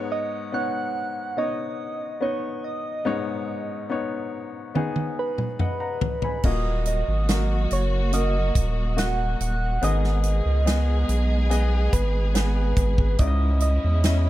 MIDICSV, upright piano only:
0, 0, Header, 1, 2, 480
1, 0, Start_track
1, 0, Tempo, 845070
1, 1738, Time_signature, 4, 2, 24, 8
1, 8120, End_track
2, 0, Start_track
2, 0, Title_t, "Upright piano"
2, 0, Program_c, 0, 0
2, 0, Control_c, 0, 64, 127
2, 0, Note_on_c, 0, 44, 58
2, 0, Note_on_c, 0, 56, 58
2, 0, Note_on_c, 0, 59, 85
2, 0, Note_on_c, 0, 63, 76
2, 0, Note_on_c, 0, 73, 93
2, 275, Note_off_c, 0, 59, 0
2, 276, Note_off_c, 0, 63, 0
2, 279, Note_off_c, 0, 73, 0
2, 297, Note_on_c, 0, 59, 56
2, 300, Note_on_c, 0, 63, 50
2, 306, Note_on_c, 0, 73, 58
2, 754, Note_off_c, 0, 59, 0
2, 755, Note_off_c, 0, 63, 0
2, 758, Note_off_c, 0, 73, 0
2, 777, Note_on_c, 0, 59, 52
2, 781, Note_on_c, 0, 63, 48
2, 786, Note_on_c, 0, 73, 60
2, 1234, Note_off_c, 0, 59, 0
2, 1236, Note_off_c, 0, 63, 0
2, 1238, Note_off_c, 0, 73, 0
2, 1253, Note_on_c, 0, 59, 56
2, 1260, Note_on_c, 0, 63, 48
2, 1264, Note_on_c, 0, 75, 57
2, 1711, Note_off_c, 0, 59, 0
2, 1715, Note_off_c, 0, 63, 0
2, 1717, Note_off_c, 0, 56, 0
2, 1717, Note_off_c, 0, 75, 0
2, 1718, Note_off_c, 0, 44, 0
2, 1732, Note_on_c, 0, 59, 73
2, 1736, Note_on_c, 0, 63, 63
2, 1737, Note_on_c, 0, 44, 49
2, 1738, Note_on_c, 0, 56, 48
2, 1742, Note_on_c, 0, 73, 75
2, 2191, Note_off_c, 0, 59, 0
2, 2193, Note_off_c, 0, 63, 0
2, 2196, Note_off_c, 0, 73, 0
2, 2212, Note_on_c, 0, 59, 62
2, 2217, Note_on_c, 0, 63, 54
2, 2223, Note_on_c, 0, 73, 67
2, 2671, Note_off_c, 0, 59, 0
2, 2674, Note_off_c, 0, 63, 0
2, 2677, Note_off_c, 0, 73, 0
2, 2696, Note_on_c, 0, 59, 61
2, 2704, Note_on_c, 0, 63, 53
2, 2706, Note_on_c, 0, 68, 65
2, 3153, Note_off_c, 0, 59, 0
2, 3157, Note_off_c, 0, 63, 0
2, 3158, Note_off_c, 0, 68, 0
2, 3178, Note_on_c, 0, 78, 46
2, 3180, Note_on_c, 0, 75, 38
2, 3288, Note_off_c, 0, 78, 0
2, 3293, Note_off_c, 0, 75, 0
2, 3295, Note_on_c, 0, 82, 48
2, 3296, Note_on_c, 0, 78, 42
2, 3524, Note_off_c, 0, 82, 0
2, 3525, Note_off_c, 0, 78, 0
2, 3541, Note_on_c, 0, 83, 47
2, 3546, Note_on_c, 0, 80, 38
2, 3635, Note_off_c, 0, 44, 0
2, 3635, Note_off_c, 0, 56, 0
2, 3658, Note_on_c, 0, 58, 55
2, 3663, Note_on_c, 0, 66, 51
2, 3665, Note_on_c, 0, 46, 49
2, 3666, Control_c, 0, 64, 0
2, 3669, Note_on_c, 0, 75, 62
2, 3767, Note_off_c, 0, 83, 0
2, 3770, Note_off_c, 0, 80, 0
2, 3774, Control_c, 0, 64, 127
2, 4114, Note_off_c, 0, 58, 0
2, 4117, Note_off_c, 0, 66, 0
2, 4120, Note_off_c, 0, 75, 0
2, 4140, Note_on_c, 0, 58, 51
2, 4144, Note_on_c, 0, 66, 48
2, 4147, Note_on_c, 0, 70, 58
2, 4359, Note_off_c, 0, 46, 0
2, 4595, Note_off_c, 0, 58, 0
2, 4597, Note_off_c, 0, 66, 0
2, 4599, Note_off_c, 0, 70, 0
2, 4614, Note_on_c, 0, 58, 57
2, 4618, Note_on_c, 0, 66, 48
2, 4623, Note_on_c, 0, 70, 60
2, 5072, Note_off_c, 0, 58, 0
2, 5074, Note_off_c, 0, 66, 0
2, 5076, Note_off_c, 0, 70, 0
2, 5092, Note_on_c, 0, 58, 55
2, 5093, Note_on_c, 0, 66, 50
2, 5101, Note_on_c, 0, 75, 60
2, 5551, Note_off_c, 0, 58, 0
2, 5552, Note_off_c, 0, 66, 0
2, 5555, Note_off_c, 0, 75, 0
2, 5576, Note_on_c, 0, 59, 58
2, 5580, Note_on_c, 0, 44, 50
2, 5582, Note_on_c, 0, 51, 50
2, 5583, Note_on_c, 0, 68, 50
2, 5584, Control_c, 0, 64, 0
2, 5586, Note_on_c, 0, 75, 60
2, 5701, Control_c, 0, 64, 127
2, 6033, Note_off_c, 0, 59, 0
2, 6036, Note_off_c, 0, 68, 0
2, 6038, Note_off_c, 0, 75, 0
2, 6052, Note_on_c, 0, 59, 55
2, 6059, Note_on_c, 0, 68, 49
2, 6062, Note_on_c, 0, 75, 61
2, 6276, Note_off_c, 0, 44, 0
2, 6277, Note_off_c, 0, 51, 0
2, 6511, Note_off_c, 0, 59, 0
2, 6515, Note_off_c, 0, 68, 0
2, 6516, Note_off_c, 0, 75, 0
2, 6530, Note_on_c, 0, 59, 60
2, 6534, Note_on_c, 0, 68, 59
2, 6538, Note_on_c, 0, 75, 74
2, 6990, Note_off_c, 0, 59, 0
2, 6992, Note_off_c, 0, 68, 0
2, 6994, Note_off_c, 0, 75, 0
2, 7011, Note_on_c, 0, 59, 54
2, 7019, Note_on_c, 0, 68, 50
2, 7022, Note_on_c, 0, 71, 61
2, 7470, Note_off_c, 0, 59, 0
2, 7475, Note_off_c, 0, 68, 0
2, 7476, Note_off_c, 0, 71, 0
2, 7491, Note_on_c, 0, 61, 59
2, 7497, Note_on_c, 0, 44, 51
2, 7497, Note_on_c, 0, 64, 55
2, 7503, Note_on_c, 0, 74, 54
2, 7506, Control_c, 0, 64, 0
2, 7537, Note_off_c, 0, 74, 0
2, 7538, Note_on_c, 0, 75, 68
2, 7621, Control_c, 0, 64, 127
2, 7950, Note_off_c, 0, 61, 0
2, 7953, Note_off_c, 0, 64, 0
2, 7971, Note_off_c, 0, 75, 0
2, 7972, Note_on_c, 0, 61, 59
2, 7977, Note_on_c, 0, 64, 52
2, 7980, Note_on_c, 0, 75, 59
2, 8120, Note_off_c, 0, 44, 0
2, 8120, Note_off_c, 0, 61, 0
2, 8120, Note_off_c, 0, 64, 0
2, 8120, Note_off_c, 0, 75, 0
2, 8120, End_track
0, 0, End_of_file